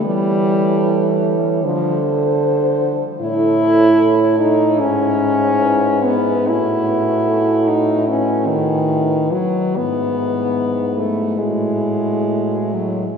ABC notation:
X:1
M:4/4
L:1/8
Q:1/4=75
K:Ddor
V:1 name="French horn"
^c4 =c4 | [K:E] c6 B2- | B2 A2 B4- | B3 z F4 |]
V:2 name="French horn"
A4 A4 | [K:E] A4 E4 | F6- F z | E8 |]
V:3 name="French horn"
G,3 z F, z3 | [K:E] E3 D C3 B, | E3 D C D,2 F, | B,3 A, G,3 F, |]
V:4 name="French horn" clef=bass
E,4 D,4 | [K:E] A,,4 G,,4 | A,,6- A,, z | G,,4 A,,4 |]